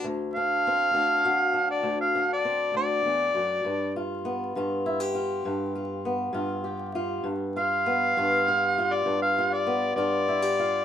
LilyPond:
<<
  \new Staff \with { instrumentName = "Harmonica" } { \time 12/8 \key g \major \tempo 4. = 66 r8 f''2~ f''16 d''8 f''8 d''8. d''4.~ | d''8 r1 r4. | r8 f''2~ f''16 d''8 f''8 d''8. d''4. | }
  \new Staff \with { instrumentName = "Steel-string acoustic guitar" } { \time 12/8 \key g \major << { r8 d'8 c'8 d'8 fis'8 d'4 d'8 c'2 | r8 f'8 b8 f'8 e'16 g'16 f'4 f'8 b8 f'8 g'8 f'8 | r8 f'8 b8 f'8 g'8 f'4 f'8 b8 f'8 e'16 g'16 f'8 | } \\ { d,4. d,4. d,4. d,8 e,8 fis,8 | g,4. g,4. g,4. g,4. | g,4. g,4. g,4. g,4. | } >> }
>>